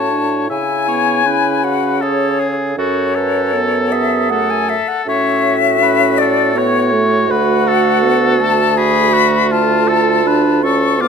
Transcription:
0.00 0.46 A2 medium
0.00 0.11 C#4 medium
0.00 0.51 F#4 medium
0.00 0.49 C#5 medium
0.00 0.49 A5 medium
0.10 0.50 D4 medium
0.48 2.74 C#3 medium
0.48 0.87 E4 medium
0.48 1.25 E4 medium
0.48 0.87 E5 medium
0.48 1.65 G#5 medium
0.88 1.26 B3 medium
0.88 1.28 C#5 medium
1.24 2.77 C#4 medium
1.24 1.65 E4 medium
1.24 2.02 B4 medium
1.63 2.04 F#4 medium
1.63 2.04 F#5 medium
2.01 2.42 G#4 medium
2.01 2.41 A4 medium
2.01 2.55 C#5 medium
2.39 2.78 G#4 medium
2.39 2.78 A4 medium
2.77 4.75 F#2 medium
2.77 3.55 C#4 medium
2.77 3.16 F#4 medium
2.77 3.15 A4 medium
2.77 3.93 C#5 medium
3.15 4.30 A4 medium
3.15 3.55 B4 medium
3.53 4.32 B3 medium
3.53 3.93 A4 medium
3.92 4.80 G#4 medium
3.92 4.31 E5 medium
4.30 4.80 A3 medium
4.30 5.06 A4 medium
4.30 4.52 F#5 medium
4.50 4.71 G#5 medium
4.69 4.89 E5 loud
4.88 5.06 F#5 medium
5.06 7.31 A2 medium
5.06 5.77 C#4 medium
5.06 6.51 F#4 medium
5.06 5.55 C#5 medium
5.06 6.19 E5 loud
5.79 6.56 C#4 medium
5.79 6.16 B4 medium
6.18 6.59 A4 medium
6.18 6.57 D5 loud
6.54 6.94 B3 medium
6.54 8.73 F#4 medium
6.54 6.93 C#5 loud
6.54 7.32 C#5 loud
6.92 7.28 A3 medium
7.29 11.08 D2 medium
7.29 8.04 A3 medium
7.29 7.69 B4 medium
7.29 8.42 F#5 loud
7.67 8.79 A4 medium
8.03 8.39 B3 medium
8.40 10.22 A3 medium
8.40 8.79 A5 loud
8.77 9.52 F#4 medium
8.77 9.15 G#4 medium
8.77 9.51 B5 loud
9.13 9.53 F#4 medium
9.51 11.08 F4 medium
9.51 9.89 F4 medium
9.51 10.64 A5 loud
9.88 10.28 A4 loud
10.25 10.62 D4 medium
10.25 10.64 B4 medium
10.63 11.00 C#4 medium
10.63 11.03 A4 medium
10.63 11.02 C#6 loud
10.99 11.08 B3 medium
10.99 11.08 F4 medium
10.99 11.08 D6 loud

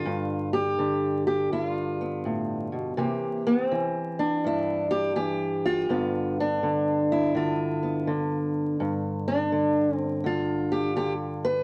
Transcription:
0.00 0.77 D3 medium
0.00 0.53 F4 medium
0.05 1.51 G2 medium
0.53 1.26 G4 medium
0.79 2.97 D3 medium
1.27 1.52 G4 medium
1.52 2.95 G2 medium
1.52 1.66 E4 medium
1.66 2.98 F4 medium
2.01 2.95 B3 soft
2.25 2.72 A2 medium
2.72 2.97 B2 medium
2.97 3.70 C3 medium
2.97 3.70 E3 soft
2.97 3.45 A#3 soft
2.97 4.46 G4 soft
3.47 3.67 B3 medium
3.67 4.91 C4 medium
3.72 5.14 E3 medium
4.19 5.17 D4 medium
4.45 5.86 G2 medium
4.45 4.90 E4 medium
4.91 5.15 G4 loud
5.16 5.85 E3 medium
5.16 5.89 G4 medium
5.65 6.37 F4 loud
5.89 8.79 G2 medium
5.89 6.62 D3 soft
5.89 7.82 B3 soft
6.40 7.36 D4 medium
6.63 7.33 D3 medium
7.12 8.08 E4 medium
7.35 8.06 D3 medium
7.35 8.81 F4 medium
7.83 10.29 B3 soft
8.07 9.51 D3 medium
8.80 11.63 G2 medium
9.28 9.96 D4 medium
9.52 10.23 D3 medium
9.96 10.25 C4 medium
10.24 10.95 D3 medium
10.24 11.45 F4 medium
10.72 10.95 G4 medium
10.96 11.63 D3 medium
10.96 11.13 G4 medium
11.45 11.63 B4 loud

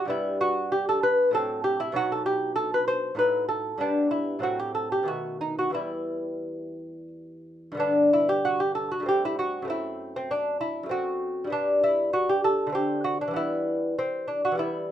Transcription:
0.05 1.28 G2 medium
0.05 1.29 G3 medium
0.05 1.29 B3 medium
0.10 0.40 E4 medium
0.41 0.71 F#4 medium
0.72 0.88 G4 medium
0.89 1.03 A4 medium
1.03 1.33 B4 loud
1.31 1.92 A2 medium
1.31 1.92 F#3 medium
1.31 1.93 C4 medium
1.31 1.63 A4 medium
1.64 1.80 G4 medium
1.80 1.95 E4 medium
1.92 3.12 B2 medium
1.92 3.13 F#3 medium
1.92 3.13 D#4 medium
1.96 2.11 F#4 loud
2.12 2.25 A4 medium
2.26 2.55 G4 medium
2.56 2.71 A4 loud
2.74 2.87 B4 medium
2.88 3.16 C5 loud
3.15 3.77 A2 medium
3.15 3.77 F#3 soft
3.15 3.78 D#4 medium
3.15 3.48 B4 medium
3.49 3.79 A4 medium
3.78 4.39 G2 medium
3.78 4.40 G3 medium
3.78 4.41 B3 medium
3.78 4.11 D4 medium
4.11 4.41 E4 medium
4.39 5.03 A2 medium
4.39 5.04 F#3 soft
4.39 5.05 C4 soft
4.43 4.59 F#4 medium
4.59 4.74 G4 medium
4.75 4.91 A4 medium
4.92 5.08 G4 medium
5.03 5.71 B2 medium
5.03 5.72 D#3 soft
5.03 5.73 A3 soft
5.08 5.40 F#4 medium
5.41 5.58 D#4 medium
5.59 5.74 F#4 medium
5.70 7.73 E2 medium
5.70 7.74 E3 soft
5.70 7.74 G3 soft
5.74 7.08 E4 medium
7.72 8.97 G2 medium
7.72 8.99 D3 medium
7.77 9.00 B3 medium
7.77 8.10 D4 medium
8.13 8.28 E4 medium
8.29 8.44 G4 medium
8.45 8.60 F#4 medium
8.60 8.75 G4 medium
8.75 8.90 A4 medium
8.92 9.06 F#4 medium
9.00 9.63 G2 medium
9.00 9.64 A3 medium
9.06 9.66 C4 medium
9.06 9.22 G4 medium
9.25 9.38 E4 medium
9.39 9.67 F#4 medium
9.62 10.82 F#2 medium
9.62 10.85 A3 medium
9.68 10.15 C4 medium
9.68 10.13 E4 medium
10.16 10.31 C4 medium
10.31 10.60 D4 medium
10.61 10.90 E4 medium
10.83 11.46 F#2 medium
10.83 11.47 A3 soft
10.89 11.49 C4 medium
10.89 11.49 F#4 medium
11.44 12.66 G2 medium
11.44 12.67 G3 medium
11.50 12.68 B3 medium
11.50 11.81 D4 medium
11.83 12.12 E4 medium
12.13 12.28 F#4 medium
12.29 12.43 G4 medium
12.44 12.73 A4 medium
12.67 13.27 D3 medium
12.67 13.31 A3 soft
12.72 13.32 C4 medium
12.72 13.03 G4 medium
13.04 13.19 F#4 medium
13.21 13.36 D4 medium
13.28 14.49 E3 medium
13.28 14.51 G3 medium
13.34 13.98 B3 medium
13.34 13.95 E4 medium
13.99 14.26 C4 medium
14.28 14.42 D4 medium
14.45 14.58 F#4 medium
14.52 14.92 E3 medium
14.52 14.92 G3 soft
14.58 14.92 B3 medium
14.58 14.92 E4 medium

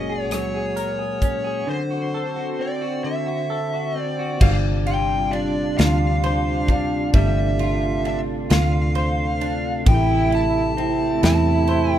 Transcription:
0.00 0.31 F#1 medium
0.00 1.65 A#2 medium
0.00 0.31 F#3 medium
0.00 1.65 G#3 soft
0.00 1.21 C#4 soft
0.00 4.37 F#4 medium
0.00 0.75 A#4 medium
0.00 0.29 D#5 medium
0.10 0.53 G#4 medium
0.31 1.63 C#2 medium
0.31 2.62 F#3 medium
0.31 1.73 C#5 medium
0.31 cross-stick medium
0.31 closed hi-hat medium
0.54 0.98 G#4 soft
0.76 1.77 A#4 medium
0.76 closed hi-hat soft
0.99 1.43 G#4 soft
1.22 1.77 C#4 medium
1.22 kick medium
1.22 closed hi-hat medium
1.44 1.76 G#4 medium
1.67 4.38 D3 medium
1.67 3.04 D3 medium
1.67 4.38 C4 soft
1.67 3.92 C5 medium
1.91 2.35 F#4 medium
2.14 3.49 A4 medium
2.36 2.80 F#4 soft
2.59 3.95 C4 medium
2.59 3.04 D5 medium
2.81 3.25 F#4 medium
3.04 6.27 D3 medium
3.04 3.99 E5 medium
3.26 3.72 F#4 soft
3.50 4.50 A4 medium
3.73 4.18 F#4 soft
3.96 5.33 C4 medium
3.96 4.41 D5 medium
4.19 4.50 F#4 medium
4.40 5.73 G1 medium
4.40 11.99 C3 medium
4.40 7.11 G3 medium
4.40 7.15 G3 medium
4.40 9.56 D4 medium
4.40 9.82 F4 medium
4.40 4.54 F5 medium
4.40 kick loud
4.40 crash medium
4.87 5.77 F4 medium
4.87 5.33 G5 medium
4.87 ride soft
5.32 6.68 D4 medium
5.32 5.77 D5 medium
5.32 ride soft
5.78 7.11 D2 medium
5.78 7.59 F4 soft
5.78 7.10 F5 loud
5.78 snare loud
5.78 ride medium
6.24 8.95 C5 medium
6.24 ride soft
6.68 8.03 D4 medium
6.68 kick medium
6.68 ride soft
7.14 8.46 G1 medium
7.14 9.89 G3 medium
7.14 11.99 A3 medium
7.14 8.05 E5 medium
7.14 kick loud
7.14 ride medium
7.59 8.49 F4 medium
7.59 ride soft
8.04 9.40 D4 medium
8.04 8.19 E5 loud
8.04 ride soft
8.50 9.83 D2 loud
8.50 9.96 F4 medium
8.50 9.84 F5 loud
8.50 snare loud
8.50 ride medium
8.95 11.68 C5 medium
8.95 ride soft
9.41 9.96 D4 medium
9.41 ride soft
9.86 11.19 A1 medium
9.86 11.99 A2 medium
9.86 10.74 E4 loud
9.86 11.99 G4 medium
9.86 10.30 G5 loud
9.86 kick loud
9.86 ride medium
10.32 11.21 E4 medium
10.32 11.21 A5 loud
10.32 ride soft
10.75 11.99 C4 medium
10.75 11.99 E4 loud
10.75 ride soft
11.23 11.99 E2 loud
11.23 11.99 E4 medium
11.23 11.91 A5 loud
11.23 snare loud
11.23 ride medium
11.67 11.99 C5 medium
11.67 ride soft
11.91 11.99 G5 loud

